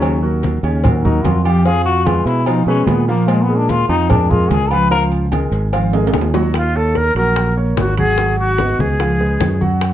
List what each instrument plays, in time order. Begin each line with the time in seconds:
Already playing: fingered electric bass D#2, grand piano C#3 C#4 C#5, trombone F#3
0.02 cowbell, high conga, low agogo
0.23 grand piano F#3 F#4 A#4, high conga
0.43 cowbell, high conga, low timbale, low agogo
0.63 fingered electric bass D#2, grand piano C#3 C#4 C#5, high conga, low agogo
0.84 grand piano F#3 F#4 A#4, cowbell, high conga, low conga, low agogo
1.04 grand piano F#3 F#4 A#4, trombone D#4, high conga, low conga
1.24 fingered electric bass F2, trombone F4, cowbell, high conga, low timbale, low agogo
1.45 grand piano F3 F4 F5, trombone G4, high conga, low agogo
1.65 grand piano F3 F4 F5, trombone G#4, cowbell, high conga
1.86 trombone F#4, high conga, low agogo
2.06 grand piano G#3 G#4 B4, trombone F4, cowbell, high conga, low timbale, low agogo
2.25 fingered electric bass B2, trombone E4, cowbell
2.46 grand piano F3 F4 F5, trombone D#4, cowbell, high conga, low agogo
2.66 fingered electric bass B2, grand piano G#3 G#4 B4, trombone C#4, high conga
2.87 fingered electric bass A#2, trombone B3, cowbell, high conga, low timbale, low agogo
3.08 grand piano F3 F4 F5, trombone A#3, high conga
3.28 trombone G#3, cowbell, high conga, low agogo
3.43 trombone B3
3.49 grand piano G#3 G#4 A#4, high conga
3.56 trombone D4
3.69 trombone F4, cowbell, high conga, low timbale, low agogo
3.89 fingered electric bass F2, grand piano F3 F4 F5, trombone D#4, high conga, low agogo
4.10 grand piano G#3 G#4 A#4, trombone D4, cowbell, high conga, low conga, low agogo
4.30 grand piano G#3 G#4 A#4, trombone F4, high conga, low conga
4.50 fingered electric bass C#2, trombone G#4, cowbell, high conga, low timbale, low agogo
4.71 grand piano F3 F4 F5, trombone B4, high conga, low agogo
4.91 grand piano F3 F4 F5, trombone A#4, cowbell, high conga
5.12 high conga, low agogo
5.32 grand piano G#3 G#4 A#4, cowbell, high conga, low timbale, low agogo
5.51 fingered electric bass G#1, cowbell
5.73 grand piano F3 F4 F5, cowbell, high conga, low agogo
5.93 grand piano G#3 G#4 A#4, high conga, high timbale
6.07 high timbale
6.13 fingered electric bass D#2, cowbell, high bongo, high conga, low agogo
6.21 low timbale
6.34 grand piano F#3 F#4 F#5, low bongo, high conga, low timbale
6.54 flute F4, high bongo, high conga, high timbale
6.75 grand piano A#3 A#4 C#5, flute A4, high conga
6.95 flute A#4, high bongo, high conga, high timbale, low timbale
7.15 fingered electric bass A#1, grand piano F#3 F#4 F#5, flute A#4, high timbale
7.36 high bongo, high conga, high timbale
7.57 grand piano A#3 A#4 C#5, high conga
7.76 fingered electric bass G#1, flute F#4, high bongo, low bongo, high conga, high timbale, low timbale
7.97 grand piano F#3 F#4 F#5, flute G#4, high conga, high timbale
8.18 grand piano F#3 F#4 F#5, high bongo, high conga
8.39 flute F#4, high conga
8.58 grand piano B3 B4 D#5, high bongo, high conga, high timbale, low timbale
8.79 fingered electric bass C#2, flute G#4, high bongo, high conga
9.00 grand piano F3 F4 F5, high bongo, high conga, high timbale
9.20 grand piano G#3 G#4 B4, high bongo, high conga
9.40 fingered electric bass F#2, high bongo, low bongo, high conga, high timbale, low timbale
9.61 grand piano F#3 F#4 F#5, high bongo, high conga
9.81 high bongo, high conga, high timbale